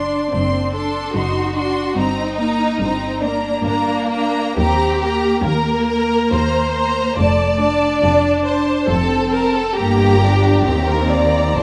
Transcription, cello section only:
0.00 0.19 F#2 soft
0.32 1.02 F#2 soft
1.14 1.84 F#2 soft
1.96 2.66 G2 soft
2.79 3.52 G2 soft
3.63 4.44 G2 soft
4.56 5.32 D#2 soft
5.43 6.18 D#2 soft
6.31 7.05 D#2 soft
7.17 7.90 F2 medium
8.02 8.75 F2 medium
8.87 9.65 F2 soft
9.78 10.63 G2 soft
10.66 11.59 D#2 soft
11.59 11.63 F2 soft

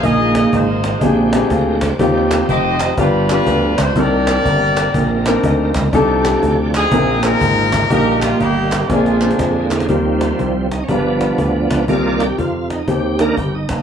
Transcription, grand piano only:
0.03 0.81 A#2 medium
0.03 0.63 A#3 medium
0.03 0.64 D#4 medium
0.03 0.64 F4 medium
0.03 0.64 G#4 medium
1.01 1.79 A#2 medium
1.01 1.27 C4 medium
1.01 1.27 D4 medium
1.01 1.28 G4 medium
1.01 1.28 G#4 medium
1.33 1.75 C4 medium
1.33 1.75 D4 medium
1.33 1.75 G4 medium
1.33 1.76 G#4 medium
1.51 1.81 F5 medium
1.82 2.29 C5 medium
1.99 2.77 D#3 medium
1.99 2.60 C4 medium
1.99 2.60 D#4 medium
1.99 2.60 F4 medium
1.99 2.60 G4 loud
2.98 3.75 G2 medium
2.98 3.23 B3 medium
2.98 3.23 D4 medium
2.98 3.24 F4 medium
2.98 3.24 G4 medium
3.30 3.71 B3 medium
3.30 3.72 D4 medium
3.30 3.72 F4 medium
3.30 3.72 G4 medium
3.96 4.73 C3 medium
3.96 4.56 C4 medium
3.96 4.56 D4 medium
3.96 4.57 D#4 medium
3.96 4.57 A#4 medium
5.27 5.68 C4 medium
5.27 5.69 D4 medium
5.27 5.69 D#4 medium
5.27 5.69 A#4 loud
5.45 5.90 D#5 medium
5.93 6.71 C3 medium
5.93 6.54 D4 medium
5.93 6.54 D#4 medium
5.93 6.54 G4 medium
5.93 6.54 A4 loud
6.93 7.70 A#2 medium
6.93 7.18 C4 medium
6.93 7.18 D#4 medium
6.93 7.18 G#4 medium
6.93 7.18 A#4 medium
7.24 7.66 C4 medium
7.24 7.28 D4 medium
7.24 7.66 G#4 medium
7.24 7.66 A#4 medium
7.30 7.69 D#4 medium
7.90 8.69 A#2 medium
7.90 8.51 A#3 medium
7.90 8.52 D#4 medium
7.90 8.52 G4 medium
7.90 8.52 A#4 medium
8.90 9.68 A#2 medium
8.90 9.16 C4 medium
8.90 9.16 D4 medium
8.90 9.16 G#4 medium
8.90 9.17 A#4 medium
9.22 9.64 C4 medium
9.22 9.64 D4 medium
9.22 9.64 G#4 medium
9.22 9.65 C5 medium
9.88 10.67 D#3 medium
9.88 10.49 C4 medium
9.88 10.50 D#4 medium
9.88 10.50 G4 medium
9.88 10.50 A#4 medium
10.89 11.67 G2 medium
10.89 11.50 D4 medium
10.89 11.50 F4 medium
10.89 11.50 G4 medium
10.89 10.97 G#4 medium
10.96 11.54 B4 medium
11.88 12.67 C3 medium
11.88 12.49 C4 medium
11.88 12.50 D#4 medium
11.88 12.50 G4 medium
11.88 12.50 A#4 medium
12.88 13.49 C4 medium
12.88 13.49 D#4 medium
12.88 13.50 G4 medium
12.88 13.50 C5 medium

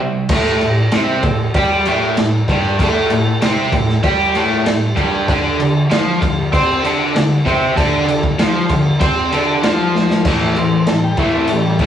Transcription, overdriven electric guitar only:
0.00 0.26 C3 medium
0.00 0.27 G3 medium
0.31 0.60 A2 medium
0.31 0.61 A3 loud
0.62 0.87 A2 medium
0.93 1.23 C3 medium
0.93 1.23 C4 medium
1.24 1.49 A2 medium
1.55 1.85 G3 medium
1.55 1.85 G4 loud
1.87 2.16 A2 loud
1.87 2.17 A3 medium
2.18 2.42 A2 medium
2.49 2.79 G2 loud
2.49 2.79 G3 loud
2.80 3.10 A2 medium
2.80 3.10 A3 medium
3.11 3.35 A2 medium
3.42 3.72 C3 medium
3.42 3.72 C4 loud
3.73 3.97 A2 medium
4.04 4.34 G3 medium
4.04 4.34 G4 loud
4.35 4.65 A2 medium
4.35 4.66 A3 medium
4.66 4.91 A2 medium
4.95 5.26 G2 loud
4.95 5.27 G3 loud
5.28 5.58 D3 medium
5.28 5.59 D4 loud
5.61 5.85 D3 medium
5.91 6.21 F3 medium
5.91 6.21 F4 loud
6.21 6.46 D3 medium
6.52 6.83 C4 medium
6.52 6.83 C5 medium
6.83 7.13 D3 loud
6.83 7.14 D4 loud
7.15 7.39 D3 medium
7.45 7.76 C3 medium
7.45 7.76 C4 loud
7.76 8.06 D3 medium
7.76 8.07 D4 loud
8.07 8.32 D3 medium
8.39 8.69 F3 medium
8.39 8.69 F4 medium
8.70 8.95 D3 medium
9.00 9.30 C4 loud
9.00 9.31 C5 medium
9.32 9.62 D3 medium
9.32 9.62 D4 medium
9.63 10.24 F3 medium
9.63 10.24 F4 loud
10.26 10.54 A2 medium
10.26 10.55 E3 medium
10.26 10.55 A3 medium
10.57 10.84 A2 medium
10.57 10.84 E3 medium
10.89 11.15 A2 medium
10.89 11.16 E3 medium
11.18 11.47 A2 medium
11.18 11.47 E3 medium
11.18 11.48 A3 medium
11.49 11.77 A2 medium
11.49 11.77 E3 medium
11.80 11.86 A2 medium
11.80 11.86 E3 medium
11.80 11.86 A3 loud

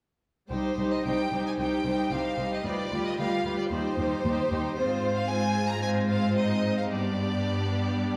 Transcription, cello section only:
0.51 0.59 C2 soft
0.77 0.85 C2 soft
1.05 1.13 C2 soft
1.31 1.39 C2 soft
1.58 1.66 C2 soft
1.85 1.93 C2 soft
2.12 2.20 C2 soft
2.39 2.47 C2 soft
2.65 2.73 D2 soft
2.92 3.00 D2 soft
3.19 3.27 D2 soft
3.45 3.53 D2 soft
3.72 3.80 D#2 soft
3.98 4.06 D#2 soft
4.24 4.32 D#2 soft
4.51 4.59 D#2 soft
4.77 6.87 G#2 soft
6.91 8.17 G2 soft

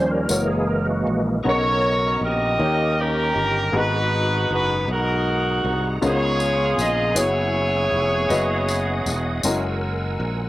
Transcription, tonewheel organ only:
0.00 0.26 F3 medium
0.00 0.27 G3 soft
0.00 0.27 C#4 medium
0.00 0.11 C5 loud
0.11 0.50 A#4 medium
0.28 1.39 E3 medium
0.28 1.40 G#3 soft
0.28 1.41 A#3 medium
0.48 0.68 G#4 medium
0.67 0.88 A#4 medium
0.86 1.22 F#4 medium
1.43 2.57 B3 medium
1.43 3.70 D#5 medium
1.43 3.71 A#5 medium
1.43 3.70 C#6 medium
2.59 3.72 G4 medium
3.72 5.99 G#4 medium
3.72 5.99 F#5 medium
3.72 7.12 A#5 medium
6.02 9.41 B3 medium
6.02 7.15 F5 medium
6.02 7.15 D#6 medium
7.16 10.49 F#5 medium
7.16 8.29 G#5 medium
7.16 8.29 E6 medium
8.28 9.42 D#5 medium
8.28 9.42 D#6 medium
9.44 10.49 A#4 medium
9.44 10.49 G#5 medium
9.44 10.49 E6 medium

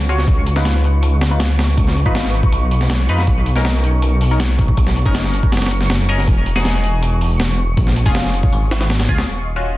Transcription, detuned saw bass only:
0.00 0.26 C#2 medium
0.28 1.76 C#2 loud
1.78 2.04 C#2 medium
2.06 2.42 G#1 medium
2.53 3.08 B1 medium
3.09 3.26 F2 medium
3.27 4.76 B1 loud
4.77 5.04 B1 medium
5.06 5.42 F#1 medium
5.53 6.26 F#1 medium
6.28 7.76 E1 medium
7.77 8.04 A#1 medium
8.06 8.42 F1 medium
8.53 9.08 G#1 medium
9.09 9.26 C#2 loud
9.28 9.77 D#1 medium

